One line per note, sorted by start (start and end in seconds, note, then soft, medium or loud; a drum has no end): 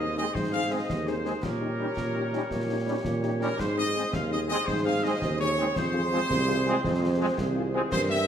0.00 0.26 D#2 medium
0.00 0.31 G#4 medium
0.00 0.31 C5 medium
0.00 0.16 D#5 loud
0.17 0.24 G#3 medium
0.17 0.23 C4 medium
0.17 0.24 C4 medium
0.17 0.23 D#4 medium
0.17 0.23 G#4 medium
0.17 0.34 D#5 loud
0.17 snare soft
0.34 0.80 G#2 medium
0.34 1.40 G#4 medium
0.34 0.53 C5 loud
0.34 1.39 C5 medium
0.34 concert bass drum loud
0.34 snare medium
0.52 0.59 C4 medium
0.52 0.59 D#4 medium
0.52 0.60 G#4 medium
0.52 0.69 F5 loud
0.70 0.77 G#3 medium
0.70 0.77 C4 medium
0.70 0.77 D#4 medium
0.70 0.77 G#4 medium
0.70 1.07 D#5 medium
0.89 1.34 D#2 medium
0.89 concert bass drum medium
0.89 snare medium
1.07 1.14 C4 medium
1.07 1.14 D#4 medium
1.07 1.14 G#4 medium
1.07 1.43 C5 loud
1.07 snare medium
1.24 1.31 G#3 medium
1.24 1.31 C4 medium
1.24 1.32 C4 medium
1.24 1.32 D#4 medium
1.24 1.32 G#4 medium
1.24 snare medium
1.42 1.88 A#2 medium
1.42 3.56 G4 medium
1.42 3.23 A#4 loud
1.42 3.60 C#5 medium
1.42 concert bass drum medium
1.42 snare medium
1.42 crash soft
1.61 1.68 C#4 medium
1.61 1.68 D#4 medium
1.61 1.68 G4 medium
1.78 1.85 G3 medium
1.78 1.85 C#4 medium
1.78 1.86 C#4 medium
1.78 1.86 D#4 medium
1.78 1.86 G4 medium
1.97 2.42 A#2 medium
1.97 concert bass drum medium
1.97 snare medium
2.15 2.22 C#4 medium
2.15 2.22 D#4 medium
2.15 2.22 G4 medium
2.33 2.40 G3 medium
2.33 2.40 C#4 medium
2.33 2.40 D#4 medium
2.33 2.40 G4 medium
2.33 snare medium
2.50 2.96 A#2 medium
2.50 concert bass drum medium
2.50 snare medium
2.69 2.75 C#4 medium
2.69 2.76 D#4 medium
2.69 2.76 G4 medium
2.86 2.93 G3 medium
2.86 2.93 C#4 medium
2.86 2.94 C#4 medium
2.86 2.93 D#4 medium
2.86 2.94 G4 medium
3.04 3.50 A#2 loud
3.04 concert bass drum medium
3.04 snare medium
3.23 3.30 C#4 medium
3.23 3.29 D#4 medium
3.23 3.29 G4 medium
3.23 snare medium
3.40 3.47 G3 medium
3.40 3.47 C#4 medium
3.40 3.47 D#4 medium
3.40 3.47 G4 medium
3.40 3.58 A#4 loud
3.40 snare medium
3.59 4.04 G#2 loud
3.59 4.66 G#4 medium
3.59 4.66 C5 medium
3.59 3.77 C5 loud
3.59 concert bass drum loud
3.59 snare medium
3.59 crash soft
3.76 3.83 C4 medium
3.76 3.83 D#4 medium
3.76 3.83 G#4 medium
3.76 4.11 D#5 loud
3.94 4.02 G#3 medium
3.94 4.01 C4 medium
3.94 4.02 C4 medium
3.94 4.01 D#4 medium
3.94 4.01 G#4 medium
4.13 4.54 D#2 loud
4.13 4.32 F5 loud
4.13 concert bass drum loud
4.13 snare medium
4.30 4.37 C4 medium
4.30 4.37 D#4 medium
4.30 4.37 G#4 medium
4.30 4.39 D#5 loud
4.48 4.56 G#3 loud
4.48 4.55 C4 medium
4.48 4.56 C4 loud
4.48 4.55 D#4 medium
4.48 4.55 G#4 medium
4.48 4.66 D#5 loud
4.48 snare medium
4.66 5.13 G#2 loud
4.66 5.59 G#4 medium
4.66 4.85 C5 loud
4.66 5.59 C5 medium
4.66 concert bass drum medium
4.66 snare medium
4.84 4.91 C4 medium
4.84 4.91 D#4 medium
4.84 4.91 G#4 medium
4.84 5.02 F5 loud
5.03 5.11 G#3 loud
5.03 5.10 C4 medium
5.03 5.11 C4 medium
5.03 5.10 D#4 medium
5.03 5.10 G#4 medium
5.03 5.40 D#5 loud
5.21 5.66 D#2 loud
5.21 concert bass drum medium
5.21 snare medium
5.39 5.46 C4 medium
5.39 5.46 D#4 medium
5.39 5.46 G#4 medium
5.39 5.73 C#5 loud
5.39 snare medium
5.57 5.64 G#3 medium
5.57 5.64 C4 medium
5.57 5.64 C4 loud
5.57 5.64 D#4 medium
5.57 5.64 G#4 medium
5.57 snare medium
5.76 6.21 F2 medium
5.76 7.88 G#4 loud
5.76 7.56 C5 loud
5.76 7.88 C5 loud
5.76 concert bass drum loud
5.76 snare medium
5.76 crash soft
5.93 6.00 C4 medium
5.93 6.00 F4 medium
5.93 6.00 G#4 medium
6.12 6.19 G#3 medium
6.12 6.18 C4 medium
6.12 6.19 C4 medium
6.12 6.19 F4 medium
6.12 6.18 G#4 medium
6.30 6.75 C2 loud
6.30 concert bass drum loud
6.30 snare medium
6.47 6.54 C4 medium
6.47 6.54 F4 medium
6.47 6.54 G#4 medium
6.65 6.74 G#3 medium
6.65 6.72 C4 loud
6.65 6.73 C4 loud
6.65 6.72 F4 medium
6.65 6.72 G#4 loud
6.65 snare medium
6.83 7.29 F2 loud
6.83 concert bass drum loud
6.83 snare medium
7.01 7.08 C4 medium
7.01 7.08 F4 medium
7.01 7.08 G#4 medium
7.18 7.26 G#3 loud
7.18 7.25 C4 medium
7.18 7.26 C4 medium
7.18 7.26 F4 medium
7.18 7.25 G#4 medium
7.38 7.83 C2 loud
7.38 concert bass drum loud
7.38 snare loud
7.55 7.62 C4 medium
7.55 7.62 F4 medium
7.55 7.62 G#4 medium
7.74 7.80 G#3 loud
7.74 7.80 C4 loud
7.74 7.80 F4 loud
7.74 7.80 G#4 medium
7.91 8.27 G2 loud
7.91 8.27 A#4 medium
7.91 8.27 C5 loud
7.91 8.00 C5 loud
7.91 concert bass drum loud
7.91 snare medium
7.91 crash medium
8.09 8.16 A#3 medium
8.09 8.16 C4 loud
8.09 8.16 G4 medium
8.09 8.27 E5 loud